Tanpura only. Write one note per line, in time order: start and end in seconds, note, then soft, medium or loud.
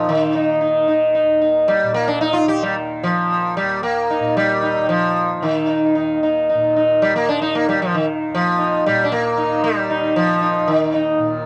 0.00 1.23 D#2 medium
0.00 1.83 A#2 medium
0.00 0.05 D#3 medium
0.05 0.65 D#3 medium
0.65 2.42 D#3 medium
1.24 3.61 D#2 medium
1.83 4.19 A#2 medium
2.42 3.03 D#3 medium
3.03 4.77 D#3 medium
3.62 5.96 D#2 medium
4.20 6.54 A#2 medium
4.77 5.37 D#3 medium
5.37 7.13 D#3 medium
5.96 8.29 D#2 medium
6.54 8.87 A#2 medium
7.13 7.72 D#3 medium
7.72 9.45 D#3 medium
8.30 10.60 D#2 medium
8.87 11.18 A#2 medium
9.45 10.02 D#3 medium
10.02 11.46 D#3 medium
10.61 11.46 D#2 medium
11.18 11.46 A#2 medium